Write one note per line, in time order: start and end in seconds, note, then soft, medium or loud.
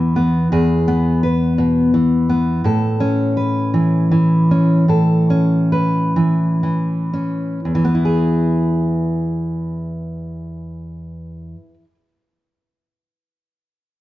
0.00 0.51 E2 medium
0.00 1.93 E3 medium
0.00 0.15 B3 soft
0.00 0.48 B4 soft
0.16 0.47 B3 soft
0.52 2.64 E2 medium
0.52 1.23 G#4 medium
0.88 2.28 B3 soft
1.23 2.61 B4 soft
1.58 1.94 B2 medium
1.94 3.74 E3 soft
2.29 2.61 B3 soft
2.64 4.83 A2 medium
2.64 3.36 A4 medium
3.00 4.49 C#4 medium
3.37 4.84 B4 soft
3.74 4.11 E3 soft
4.11 6.15 E3 soft
4.51 4.85 C#4 soft
4.88 7.59 A2 medium
4.88 5.72 A4 soft
5.30 7.12 C#4 soft
5.72 7.59 B4 soft
6.16 6.62 E3 soft
6.63 7.74 E3 soft
7.13 7.59 C#4 soft
7.65 11.54 E2 soft
7.75 11.64 E3 soft
7.84 11.74 B3 soft
7.95 11.84 E4 soft
8.05 11.94 G#4 soft